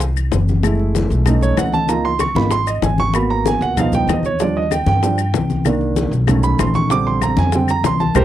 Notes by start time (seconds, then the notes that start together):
Already playing: C2
0.00 high bongo, high conga, maracas
0.17 high conga, claves, maracas
0.32 F#1, high bongo, low bongo, high conga, maracas
0.48 high conga, maracas
0.63 G#3 A3 E4, high bongo, high conga, claves, maracas
0.80 high bongo, high conga
0.95 high bongo, high conga, maracas
1.10 B1, high bongo, high conga, maracas
1.26 A3 C#4 D#4, high bongo, high conga, low conga, claves, maracas
1.41 C#5, high bongo, high conga, maracas
1.57 C#2 F#5, high bongo, low bongo, high conga, claves, maracas
1.72 A5, high conga, maracas
1.88 A#3 D#4 F4 A#5, high bongo, high conga, maracas
2.05 C6, high conga
2.19 C#6, high bongo, high conga, claves, maracas
2.35 G#1 A#3 D#4 F4 B5, high conga, maracas
2.51 C6, high bongo, high conga, maracas
2.67 D#5, high conga, claves, maracas
2.82 G#1 G#5, high bongo, low bongo, high conga, maracas
2.98 C#6, high conga, maracas
3.14 A#3 B3 F#4 B5, high bongo, high conga, claves, maracas
3.30 A#5, high bongo, high conga
3.46 G#5, high bongo, high conga, maracas
3.61 C#2 F#5, high bongo, high conga, maracas
3.77 F3 B3 D#4 F5, high bongo, high conga, low conga, claves, maracas
3.93 G5, high bongo, high conga, low conga, maracas
4.07 D#2 D#5, high bongo, low bongo, high conga, claves, maracas
4.23 C#5, high conga, maracas
4.40 F3 G3 D4 D5, high bongo, maracas
4.56 D#5, high conga
4.71 G5, high bongo, high conga, claves, maracas
4.86 G2 G5, high conga, maracas
5.03 F3 G3 D4, high bongo, high conga, maracas
5.18 high conga, claves, maracas
5.34 C2, high bongo, low bongo, high conga, maracas
5.50 high conga, maracas
5.65 D#3 A#3 D4, high bongo, high conga, claves, maracas
5.81 high bongo, high conga
5.96 high bongo, high conga, maracas
6.11 B1, high bongo, high conga, maracas
6.27 D#3 A3 C#4, high bongo, high conga, low conga, claves, maracas
6.43 B5, high bongo, high conga, maracas
6.59 A#1 C6, high bongo, low bongo, high conga, claves, maracas
6.74 C#6, high conga, maracas
6.89 D3 G3 C4 D6, high bongo, high conga, maracas
7.05 C6, high conga
7.21 A#5, high bongo, high conga, claves, maracas
7.37 F2 G#5, high conga, maracas
7.52 D3 G3 C4 G5, high bongo, high conga, maracas
7.68 A#5, high conga, claves, maracas
7.83 C2 C6, high bongo, low bongo, high conga, maracas
8.00 A5, high conga, maracas
8.15 C2 G4 A#4 C5, low bongo, low conga, claves, maracas